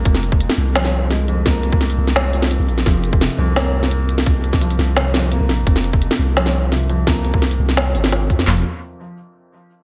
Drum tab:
HH |x-x-xo--x---x-x-|x-x-xo--o-o-x-o-|x-x-xo--x---x-x-|x-x-xo--o-o-x-o-|
CP |----------------|----------------|----------------|----------------|
SD |-o---o--oo--o---|o---o--oo--o---o|o---o---o--o---o|---o--o-o-o---o-|
FT |----------------|----------------|----------------|----------------|
BD |o--o------------|o--o------------|o--o------------|o--o------------|

HH |x-x-xo--x---x-x-|x-x-xo--o-o-x-o-|----------------|
CP |----------------|----------------|x---------------|
SD |-o---o--oo--o---|o---o--oo--oo--o|o---------------|
FT |----------------|----------------|o---------------|
BD |o--o------------|o--o----------o-|----------------|